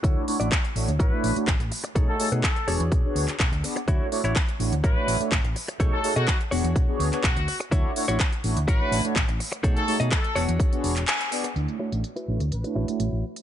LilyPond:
<<
  \new Staff \with { instrumentName = "Trumpet section" } { \time 4/4 \key d \lydian \tempo 4 = 125 r2 b'8. r4 r16 | r16 a'8 r16 a'8 r2 r8 | r2 b'8. r4 r16 | r16 a'8 fis'8 r4. r16 fis'8. r16 |
r2 b'8. r4 r16 | r16 a'8 r16 a'8 r2 r8 | r2 b'8. r4 r16 | }
  \new Staff \with { instrumentName = "Clean electric guitar" } { \time 4/4 \key d \lydian <e' fis' cis''>8 r16 <e' fis' d''>16 r4 <e' fis' cis''>8 r4. | <dis' gis' a' cis''>8 r16 <dis' gis' a' b'>16 r8 <d' fis' gis' cis''>4. r4 | <e' fis' cis''>8 r16 <e' fis' cis''>16 r4 <e' fis' cis''>8 r4. | <dis' gis' a' cis''>8 r16 <dis' gis' a' dis''>16 r8 <d' fis' gis' cis''>4. r4 |
<e' fis' cis''>8 r16 <e' fis' cis''>16 r4 <e' fis' cis''>8 r4. | <dis' gis' a' cis''>8 r16 <dis' gis' a' dis''>16 r8 <d' fis' gis' cis''>4. gis''4 | r8 <e' fis' cis''>16 r8 <e' fis' b'>8 r8. <e' fis' cis''>4 r8 | }
  \new Staff \with { instrumentName = "Analog polysynth" } { \time 4/4 \key d \lydian <a d' e' fis' cis''>8 <a d' e' fis' cis''>16 <a d' fis' cis''>16 r8 <a d' e' fis' cis''>16 r8 <a d' e' fis' cis''>8 <a d' e' fis' cis''>16 r4 | <a dis' fis' gis' cis''>8 <a dis' fis' gis' cis''>16 <dis' fis' gis' cis''>16 r8 <b d' fis' gis' cis''>16 r8 <b d' fis' gis' cis''>8 r8. <b d' fis' gis' d''>16 r16 | <a d' e' fis' cis''>8 <a d' e' fis' cis''>16 <a d' e' fis' cis''>16 r8 <a d' e' fis' cis''>16 r8 <a d' e' fis' cis''>8 <a d' e' fis' cis''>16 r4 | <a dis' fis' gis' cis''>8 <a dis' fis' gis' cis''>16 <a dis' fis' gis' cis''>16 r8 <b d' fis' gis' cis''>16 r8 <b d' fis' gis' cis''>8 <b d' fis' gis' cis''>16 r4 |
<a d' e' fis' cis''>8 <a d' e' fis' cis''>16 <a d' e' fis' cis''>16 r8 <a d' e' fis' cis''>16 r8 <a d' e' fis' cis''>8 <a d' e' fis' cis''>16 r4 | <a dis' fis' gis' cis''>8 <a dis' fis' gis' cis''>16 <a dis' gis'>16 r8 <b d' fis' gis' cis''>16 r8 <b d' fis' gis' cis''>8 r8. <b d' fis' gis' d''>16 r16 | <a d' e' fis' cis''>8 <a d' e' fis' cis''>16 <a d' e' fis' cis''>16 r8 <a d' e' fis' cis''>16 r8 <a d' e' fis' cis''>8 <a d' e' fis' cis''>16 r4 | }
  \new Staff \with { instrumentName = "Fingered electric bass" } { \clef bass \time 4/4 \key d \lydian d,16 r8 a,,16 r8 a,,16 d,16 a,,16 r16 a,,16 r16 a,,16 a,,16 r8 | b,,16 r8 b,16 r8 e,,16 e,16 b,,16 r16 d,16 r16 b,,16 d,16 r8 | d,16 r8 a,,16 r8 a,,16 d,16 a,,16 r16 a,,16 r16 a,,16 a,,16 r8 | b,,16 r8 b,16 r8 e,,16 e,16 b,,16 r16 d,16 r16 b,,16 d,16 r8 |
d,16 r8 a,,16 r8 a,,16 d,16 a,,16 r16 a,,16 r16 a,,16 a,,16 r8 | b,,16 r8 b,16 r8 e,,16 e,16 r8 e,,8 r4 | d,16 r8 a,,16 r8 a,,16 d,16 a,,16 r16 a,,16 r16 a,,16 a,,16 r8 | }
  \new DrumStaff \with { instrumentName = "Drums" } \drummode { \time 4/4 <hh bd>8 hho16 hh16 <hc hh bd>16 hh16 hho16 hh16 <hh bd>8 hho16 hh16 <hc hh bd>16 hh16 hho16 hh16 | <hh bd>8 hho16 hh16 <hc hh bd>16 hh16 hho16 hh16 <hh bd>8 hho16 <hc hh>16 <hc hh bd>16 hh16 hho16 hh16 | <hh bd>8 hho16 hh16 <hc hh bd>16 hh16 hho16 hh16 <hh bd>8 hho16 hh16 <hc hh bd>16 hh16 hho16 hh16 | <hh bd>8 hho16 hh16 <hc hh bd>16 hh16 hho16 hh16 <hh bd>8 hho16 <hc hh>16 <hc hh bd>16 hh16 hho16 hh16 |
<hh bd>8 hho16 hh16 <hc hh bd>16 hh16 hho16 hh16 <hh bd>8 hho16 hh16 <hc hh bd>16 hh16 hho16 hh16 | <hh bd>16 hh16 hho16 hh16 <hc hh bd>16 hh16 hho16 hh16 <hh bd>16 hh16 hho16 <hc hh>16 <hc hh>16 hh16 hho16 hh16 | hh16 hh8 hh16 hh16 hh8 hh16 hh16 hh8 hh16 hh8. hh16 | }
>>